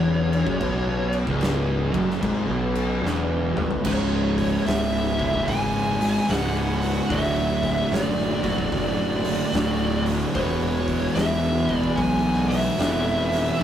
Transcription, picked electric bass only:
Already playing: E1
0.47 F#1
0.61 B1
1.27 C#1
1.94 F#1
2.23 G#1
2.49 B1
3.02 E1
3.55 G1
3.85 C#1
4.65 C#1
5.48 G#1
6.28 C#1
7.11 D1
7.91 F#1
8.72 F#1
9.53 D1
10.35 E1
11.16 E1
11.97 B1
12.78 F1

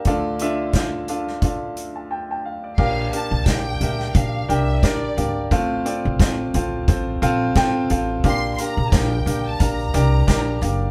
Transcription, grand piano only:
0.07 D2 D3 D4 F4 A4 F5
0.41 D4 F4 A4 E5
0.75 D4 F4 A4 F5
1.09 D4 F4 A4 F5
1.43 D4 F4 A4 F5
1.96 A5
2.11 G5 A5
2.31 G5 A5
2.45 F5
2.64 D5
2.78 A#2 D4 G4 A#4 F5
3.13 D4 G4 A#4 F5
3.47 D4 G4 A#4 F5
3.81 D4 G4 A#4 E5
4.15 D4 G4 A#4 F5
4.49 D4 G4 A#4 G5
4.84 D4 G4 A#4 D5
5.17 D4 G4 A#4 F5
5.52 A2 C4 F4 A4 F5
5.85 C4 F4 A4 D5
6.19 C4 F4 A4 F5
6.55 C4 F4 A4 F5
6.89 C4 F4 A4 C5
7.22 C4 F4 A4 F5
7.56 C4 F4 A4 G5
7.91 C4 F4 A4 F5
8.24 A#2 D4 G4 A#4 F5
8.59 D4 G4 A#4 F5
8.92 D4 G4 A#4 F5
9.26 D4 G4 A#4 F5
9.60 D4 G4 A#4 F5
9.94 D4 G4 A#4 D5
10.27 D4 G4 A#4 D5
10.61 D4 G4 A#4 F5

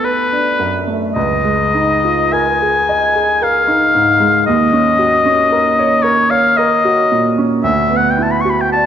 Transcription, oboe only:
0.05 B4
1.14 D#5
2.33 G#5
3.43 F5
4.46 D#5
6.03 C#5
6.30 F5
6.57 D#5
7.64 E5
7.97 F#5
8.11 G5
8.23 A5
8.31 B5
8.41 C#6
8.50 B5
8.61 G5
8.72 A5

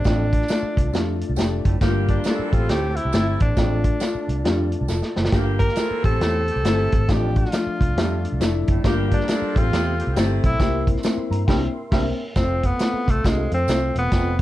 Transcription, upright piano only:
0.05 A3 D4 F4
0.50 A3 D4 F4
0.93 A3 D4 F4
1.36 A3 D4 G4
1.81 G3 A#3 F4
2.25 G3 A#3 F4
2.52 A3 C4 G4
3.13 A3 C4 G4
3.56 G#3 D4 F4
3.61 A3
4.00 A3 D4 F4
4.44 A3 D4 F4
4.88 F4 A4
5.15 A4 C5
5.32 A#3 F4 G4
5.77 A#3 F4 G4
6.04 A3 C4 G4
6.64 A3 C4 A4
7.08 A3 D4 F4
7.53 A3 D4 F4
7.97 G3 D4 E5
8.02 A3
8.40 A3 D4 E4
8.84 G3 A#3 F4
9.29 G3 A#3 F4
9.56 A3 C4 G4
10.16 A3 C4 G4
10.59 A#3 C4 E4
11.03 A#3 C4 E4
11.31 A#5
11.47 A#3 C4 E4 G5
11.92 A#3 C4 E5
12.36 A3 C4 F4
12.80 A3 C4 F4
13.24 A3 C4 F4
13.68 A3 C4 E4
13.74 F4
14.12 A3 C4 F4

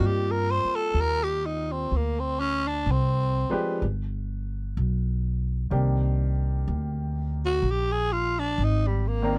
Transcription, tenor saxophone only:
0.06 G4
0.31 A#4
0.51 C5
0.75 A4
1.00 A#4
1.23 G4
1.46 D#4
1.72 C4
1.96 A#3
2.20 C4
2.40 C#4
2.67 D4
2.92 C4
7.45 F#4
7.71 G4
7.92 G#4
8.13 F4
8.39 D4
8.64 D#4
8.87 G3
9.07 A#3

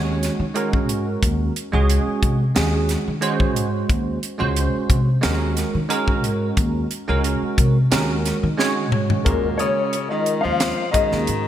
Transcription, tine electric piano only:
Already playing: G#3 C#4 F#4 C#5
0.54 G#3 C#4 F#4 A#4
1.72 G#3 C#4 F#4 G#4
2.55 G#3 C#4 F#4 G#4
3.21 G#3 C#4 F#4 C5
4.38 G#3 C#4 F#4 C5
5.21 G#3 C#4 F#4 A#4
5.89 G#3 C#4 F#4 A#4
7.08 G#3 C#4 F#4 A#4
7.91 G#3 C#4 F#4 A#4
8.57 G#3 C#4 F#4 C#5
9.25 G#3 C#4 F#4 A#4
10.11 G#3 C#4 F4 A#4
10.93 G#3 C#4 F#4 G#4

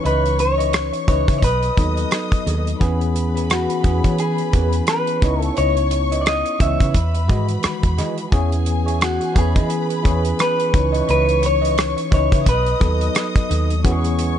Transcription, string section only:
Already playing: C#5 C#6
1.42 D#5 D#6
2.81 B4 B5
5.22 C#5 C#6
6.94 B4 B5
8.32 G#4 G#5
9.35 B4 B5
10.73 C#5 C#6
12.46 D#5 D#6
13.84 C#5 C#6

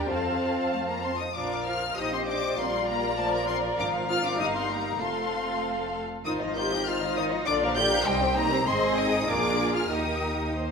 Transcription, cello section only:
0.10 C4
0.73 A3
0.88 A#3
1.04 C4
1.20 D#4
1.36 D4
1.67 F4
1.98 D#4
2.13 C4
2.29 D4
2.59 C4
2.90 A#3
3.19 A3
3.35 A#3
3.49 C4
3.79 D4
4.10 F4
4.24 D4
4.40 D#4
4.55 C4
4.70 A#3
5.01 C4
6.26 D#4
6.56 G4
6.87 F4
7.17 D#4
7.48 D4
7.78 G4
8.07 G3
8.37 A#3
8.67 C4
8.97 D#4
9.28 D4
9.74 F4
9.90 D#4

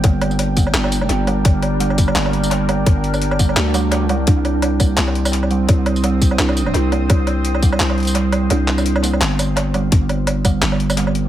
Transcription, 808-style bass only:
0.04 G1
0.74 G1
1.09 G1
1.45 G1
2.15 G1
2.87 G1
3.56 D2
4.05 C#2
4.27 C2
4.98 C2
5.69 C2
6.39 C2
6.74 C2
7.10 C2
7.80 C2
8.51 C2
9.21 G1
9.92 G1
10.62 G1

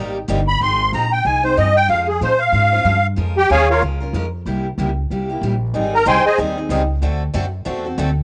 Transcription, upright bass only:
Already playing: G#1
0.29 G1
0.60 G#1
0.92 A#1
1.25 C2
1.57 G2
1.89 F2
2.21 A#2
2.52 G#2
2.84 G2
3.17 F2
3.50 D#2
3.82 C#2
4.13 F2
4.46 C2
4.78 C#2
5.11 C2
5.42 A#1
5.74 G#1
6.06 C2
6.25 muted upright bass stroke
6.38 D#2
6.69 C#2
7.02 D2
7.34 F#2
7.66 E2
7.98 D2

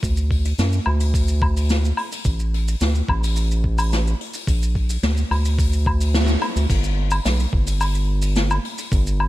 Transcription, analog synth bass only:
0.03 D2
0.59 F#2
0.87 D2
2.25 A1
2.81 D2
3.09 A1
4.47 A#1
5.03 D2
5.31 D2
6.56 D2
6.70 G1
7.25 B1
7.53 G1
8.92 G1

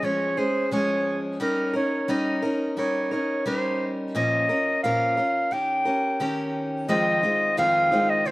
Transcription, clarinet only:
0.04 C#5
0.38 C5
0.73 C#5
1.42 A#4
1.76 C#5
2.10 D#5
2.79 C#5
3.12 C#5
3.47 C5
4.15 D#5
4.84 F5
5.53 G5
6.89 D#5
7.59 F5
8.10 D#5
8.27 C5

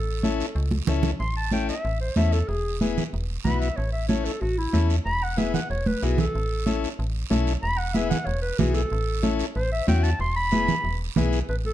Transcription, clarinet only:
Already playing: A4
1.20 C6
1.37 A5
1.53 G5
1.69 E5
2.01 C5
2.17 E5
2.33 A4
2.48 G#4
3.44 B5
3.60 E5
3.76 C#5
3.93 E5
4.08 C#5
4.25 A4
4.41 F#4
4.58 E4
5.06 B5
5.23 F#5
5.38 E5
5.54 F#5
5.70 C#5
5.87 B4
6.04 F#4
6.20 A4
7.63 B5
7.78 F#5
7.94 E5
8.10 F#5
8.25 C#5
8.42 B4
8.58 F#4
8.74 A4
9.56 C5
9.72 E5
9.88 G5
10.03 A5
10.21 C6
10.36 B5
11.49 B4
11.66 A4

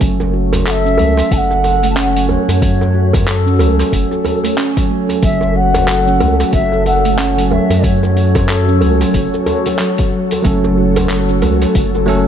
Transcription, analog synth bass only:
0.01 F#1
0.98 C#2
1.31 F#1
2.49 F#2
3.60 C#2
3.92 F#1
5.23 F#1
6.20 C#2
6.53 F#1
7.70 F#2
8.81 C#2
9.14 F#1
10.45 F#1
11.42 C#2
11.75 F#1

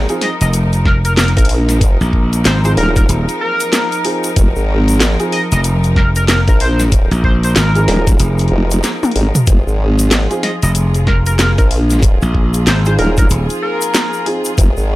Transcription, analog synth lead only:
0.22 D#5
0.41 D#5
0.86 A#4
1.05 A#4
1.17 A#4
1.37 A#4
2.46 C5
2.65 C5
2.78 A#4
2.97 A#4
3.41 A#4
5.33 D#5
5.52 D#5
5.97 A#4
6.16 A#4
6.29 A#4
6.49 A#4
6.61 C5
7.24 C5
7.44 C5
7.57 A#4
10.43 D#5
10.63 D#5
11.07 A#4
11.27 A#4
11.39 A#4
11.58 A#4
12.67 C5
12.86 C5
12.99 A#4
13.18 A#4
13.62 A#4

